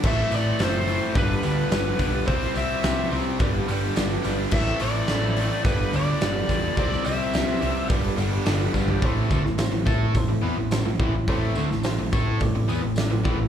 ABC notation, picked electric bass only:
X:1
M:4/4
L:1/16
Q:1/4=107
K:Am
V:1 name="Picked electric bass" clef=bass
A,,,2 A,,,2 ^F,,,4 G,,,2 D,,2 G,,,2 B,,,2 | C,,2 C,,2 C,,2 C,,2 G,,,2 G,,,2 G,,,2 G,,,2 | A,,,2 A,,,2 A,,,4 G,,,2 D,,2 G,,,2 E,,2 | C,,2 C,,2 C,,2 C,,2 G,,,2 G,,,2 G,,,2 G,,,2 |
A,,,2 D,, A,,, A,,, A,,, A,,2 A,,, A,,, E,, A,,,2 A,,, A,,, A,,, | A,,,2 D,, A,,, A,,, A,,, A,,2 A,,, A,,, E,, A,,,2 A,,, A,,, A,,, |]